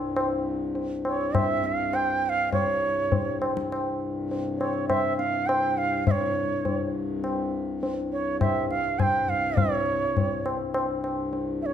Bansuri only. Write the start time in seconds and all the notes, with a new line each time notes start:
1.07 C#5
1.36 E5
1.66 F5
1.95 G5
2.26 F5 G5
2.53 C#5
4.58 C#5
4.88 E5
5.18 F5
5.47 G5
5.78 F5
6.07 C#5 E5
8.12 C#5
8.41 E5
8.70 F5
8.99 G5 G#5
9.29 F5
9.57 C#5
11.62 C#5 E5